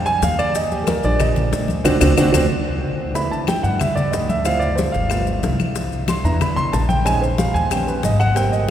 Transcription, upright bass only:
0, 0, Header, 1, 2, 480
1, 0, Start_track
1, 0, Tempo, 325380
1, 814, Time_signature, 4, 2, 24, 8
1, 12837, End_track
2, 0, Start_track
2, 0, Title_t, "Upright bass"
2, 0, Program_c, 0, 32
2, 0, Note_on_c, 0, 41, 95
2, 272, Note_off_c, 0, 41, 0
2, 325, Note_on_c, 0, 39, 95
2, 1446, Note_off_c, 0, 39, 0
2, 1530, Note_on_c, 0, 34, 90
2, 2201, Note_off_c, 0, 34, 0
2, 2242, Note_on_c, 0, 38, 92
2, 2693, Note_off_c, 0, 38, 0
2, 2728, Note_on_c, 0, 38, 99
2, 2909, Note_off_c, 0, 38, 0
2, 2969, Note_on_c, 0, 38, 101
2, 3149, Note_off_c, 0, 38, 0
2, 3208, Note_on_c, 0, 38, 101
2, 3389, Note_off_c, 0, 38, 0
2, 3436, Note_on_c, 0, 38, 99
2, 3622, Note_off_c, 0, 38, 0
2, 5362, Note_on_c, 0, 43, 88
2, 6037, Note_off_c, 0, 43, 0
2, 6089, Note_on_c, 0, 38, 92
2, 7208, Note_off_c, 0, 38, 0
2, 7288, Note_on_c, 0, 31, 94
2, 7960, Note_off_c, 0, 31, 0
2, 8010, Note_on_c, 0, 36, 91
2, 9128, Note_off_c, 0, 36, 0
2, 9203, Note_on_c, 0, 40, 91
2, 9877, Note_off_c, 0, 40, 0
2, 9930, Note_on_c, 0, 34, 87
2, 11048, Note_off_c, 0, 34, 0
2, 11125, Note_on_c, 0, 39, 96
2, 11798, Note_off_c, 0, 39, 0
2, 11850, Note_on_c, 0, 32, 94
2, 12837, Note_off_c, 0, 32, 0
2, 12837, End_track
0, 0, End_of_file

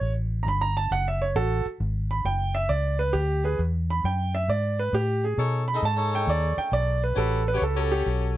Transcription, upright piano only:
0, 0, Header, 1, 2, 480
1, 0, Start_track
1, 0, Tempo, 447094
1, 17, Time_signature, 4, 2, 24, 8
1, 8988, End_track
2, 0, Start_track
2, 0, Title_t, "Upright piano"
2, 0, Program_c, 0, 0
2, 0, Note_on_c, 0, 73, 86
2, 119, Note_off_c, 0, 73, 0
2, 461, Note_on_c, 0, 82, 60
2, 499, Note_off_c, 0, 82, 0
2, 518, Note_on_c, 0, 83, 87
2, 659, Note_on_c, 0, 82, 83
2, 662, Note_off_c, 0, 83, 0
2, 813, Note_off_c, 0, 82, 0
2, 825, Note_on_c, 0, 81, 83
2, 976, Note_off_c, 0, 81, 0
2, 988, Note_on_c, 0, 78, 86
2, 1137, Note_off_c, 0, 78, 0
2, 1159, Note_on_c, 0, 76, 71
2, 1302, Note_off_c, 0, 76, 0
2, 1306, Note_on_c, 0, 73, 76
2, 1456, Note_off_c, 0, 73, 0
2, 1459, Note_on_c, 0, 69, 90
2, 1460, Note_on_c, 0, 66, 78
2, 1756, Note_off_c, 0, 66, 0
2, 1768, Note_off_c, 0, 69, 0
2, 2262, Note_on_c, 0, 83, 77
2, 2413, Note_off_c, 0, 83, 0
2, 2421, Note_on_c, 0, 79, 80
2, 2729, Note_off_c, 0, 79, 0
2, 2733, Note_on_c, 0, 76, 80
2, 2888, Note_off_c, 0, 76, 0
2, 2889, Note_on_c, 0, 74, 79
2, 3203, Note_off_c, 0, 74, 0
2, 3211, Note_on_c, 0, 71, 84
2, 3360, Note_on_c, 0, 67, 81
2, 3367, Note_off_c, 0, 71, 0
2, 3678, Note_off_c, 0, 67, 0
2, 3696, Note_on_c, 0, 68, 69
2, 3701, Note_on_c, 0, 71, 70
2, 3843, Note_off_c, 0, 68, 0
2, 3852, Note_off_c, 0, 71, 0
2, 4192, Note_on_c, 0, 83, 82
2, 4337, Note_off_c, 0, 83, 0
2, 4350, Note_on_c, 0, 79, 77
2, 4654, Note_off_c, 0, 79, 0
2, 4666, Note_on_c, 0, 76, 81
2, 4814, Note_off_c, 0, 76, 0
2, 4826, Note_on_c, 0, 74, 76
2, 5132, Note_off_c, 0, 74, 0
2, 5148, Note_on_c, 0, 71, 77
2, 5295, Note_off_c, 0, 71, 0
2, 5309, Note_on_c, 0, 67, 87
2, 5613, Note_off_c, 0, 67, 0
2, 5629, Note_on_c, 0, 68, 67
2, 5776, Note_off_c, 0, 68, 0
2, 6096, Note_on_c, 0, 83, 82
2, 6250, Note_off_c, 0, 83, 0
2, 6284, Note_on_c, 0, 81, 89
2, 6581, Note_off_c, 0, 81, 0
2, 6603, Note_on_c, 0, 79, 79
2, 6744, Note_off_c, 0, 79, 0
2, 6759, Note_on_c, 0, 74, 82
2, 7059, Note_off_c, 0, 74, 0
2, 7065, Note_on_c, 0, 79, 80
2, 7214, Note_off_c, 0, 79, 0
2, 7227, Note_on_c, 0, 74, 89
2, 7533, Note_off_c, 0, 74, 0
2, 7554, Note_on_c, 0, 71, 71
2, 7700, Note_off_c, 0, 71, 0
2, 7703, Note_on_c, 0, 69, 70
2, 8011, Note_off_c, 0, 69, 0
2, 8031, Note_on_c, 0, 71, 78
2, 8178, Note_off_c, 0, 71, 0
2, 8195, Note_on_c, 0, 69, 71
2, 8498, Note_off_c, 0, 69, 0
2, 8499, Note_on_c, 0, 67, 80
2, 8652, Note_off_c, 0, 67, 0
2, 8988, End_track
0, 0, End_of_file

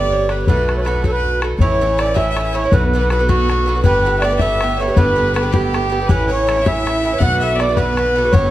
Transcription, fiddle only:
0, 0, Header, 1, 2, 480
1, 0, Start_track
1, 0, Key_signature, 2, "minor"
1, 0, Tempo, 374065
1, 604, Time_signature, 6, 3, 24, 8
1, 10915, End_track
2, 0, Start_track
2, 0, Title_t, "Fiddle"
2, 0, Program_c, 0, 110
2, 0, Note_on_c, 0, 74, 97
2, 158, Note_on_c, 0, 73, 90
2, 178, Note_off_c, 0, 74, 0
2, 404, Note_on_c, 0, 71, 73
2, 423, Note_off_c, 0, 73, 0
2, 530, Note_off_c, 0, 71, 0
2, 538, Note_on_c, 0, 73, 63
2, 635, Note_on_c, 0, 71, 73
2, 654, Note_off_c, 0, 73, 0
2, 1030, Note_off_c, 0, 71, 0
2, 1038, Note_on_c, 0, 71, 62
2, 1121, Note_on_c, 0, 73, 54
2, 1141, Note_off_c, 0, 71, 0
2, 1213, Note_on_c, 0, 71, 78
2, 1232, Note_off_c, 0, 73, 0
2, 1323, Note_off_c, 0, 71, 0
2, 1331, Note_on_c, 0, 73, 50
2, 1430, Note_on_c, 0, 71, 90
2, 1449, Note_off_c, 0, 73, 0
2, 1825, Note_off_c, 0, 71, 0
2, 2037, Note_on_c, 0, 73, 75
2, 2550, Note_on_c, 0, 74, 71
2, 2569, Note_off_c, 0, 73, 0
2, 2755, Note_on_c, 0, 76, 77
2, 2775, Note_off_c, 0, 74, 0
2, 2936, Note_off_c, 0, 76, 0
2, 2955, Note_on_c, 0, 76, 71
2, 3097, Note_off_c, 0, 76, 0
2, 3105, Note_on_c, 0, 76, 80
2, 3258, Note_on_c, 0, 73, 72
2, 3278, Note_off_c, 0, 76, 0
2, 3485, Note_on_c, 0, 71, 70
2, 3504, Note_off_c, 0, 73, 0
2, 3661, Note_off_c, 0, 71, 0
2, 3812, Note_on_c, 0, 71, 69
2, 3959, Note_off_c, 0, 71, 0
2, 3971, Note_on_c, 0, 71, 62
2, 4186, Note_off_c, 0, 71, 0
2, 4197, Note_on_c, 0, 66, 84
2, 4871, Note_off_c, 0, 66, 0
2, 4921, Note_on_c, 0, 71, 84
2, 5328, Note_off_c, 0, 71, 0
2, 5357, Note_on_c, 0, 76, 58
2, 5385, Note_on_c, 0, 74, 76
2, 5404, Note_off_c, 0, 76, 0
2, 5615, Note_on_c, 0, 76, 87
2, 5634, Note_off_c, 0, 74, 0
2, 6120, Note_on_c, 0, 73, 75
2, 6139, Note_off_c, 0, 76, 0
2, 6346, Note_on_c, 0, 71, 82
2, 6366, Note_off_c, 0, 73, 0
2, 7073, Note_on_c, 0, 67, 87
2, 7092, Note_off_c, 0, 71, 0
2, 7790, Note_on_c, 0, 71, 80
2, 7809, Note_off_c, 0, 67, 0
2, 8039, Note_off_c, 0, 71, 0
2, 8047, Note_on_c, 0, 73, 91
2, 8498, Note_on_c, 0, 76, 97
2, 8517, Note_off_c, 0, 73, 0
2, 9223, Note_on_c, 0, 78, 96
2, 9242, Note_off_c, 0, 76, 0
2, 9480, Note_off_c, 0, 78, 0
2, 9488, Note_on_c, 0, 76, 80
2, 9695, Note_on_c, 0, 74, 78
2, 9714, Note_off_c, 0, 76, 0
2, 9933, Note_off_c, 0, 74, 0
2, 9940, Note_on_c, 0, 71, 92
2, 10680, Note_on_c, 0, 73, 77
2, 10700, Note_off_c, 0, 71, 0
2, 10915, Note_off_c, 0, 73, 0
2, 10915, End_track
0, 0, End_of_file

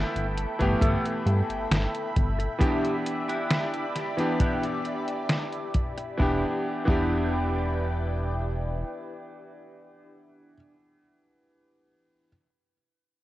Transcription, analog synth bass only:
0, 0, Header, 1, 2, 480
1, 0, Start_track
1, 0, Key_signature, 1, "minor"
1, 0, Tempo, 895522
1, 1399, Time_signature, 4, 2, 24, 8
1, 7093, End_track
2, 0, Start_track
2, 0, Title_t, "Analog synth bass"
2, 0, Program_c, 0, 38
2, 84, Note_on_c, 0, 31, 85
2, 247, Note_off_c, 0, 31, 0
2, 324, Note_on_c, 0, 31, 93
2, 404, Note_off_c, 0, 31, 0
2, 435, Note_on_c, 0, 31, 96
2, 522, Note_off_c, 0, 31, 0
2, 677, Note_on_c, 0, 43, 97
2, 764, Note_off_c, 0, 43, 0
2, 800, Note_on_c, 0, 31, 43
2, 894, Note_off_c, 0, 31, 0
2, 917, Note_on_c, 0, 31, 93
2, 1003, Note_off_c, 0, 31, 0
2, 1160, Note_on_c, 0, 31, 96
2, 1328, Note_off_c, 0, 31, 0
2, 3321, Note_on_c, 0, 28, 92
2, 3457, Note_off_c, 0, 28, 0
2, 3686, Note_on_c, 0, 28, 96
2, 4739, Note_off_c, 0, 28, 0
2, 7093, End_track
0, 0, End_of_file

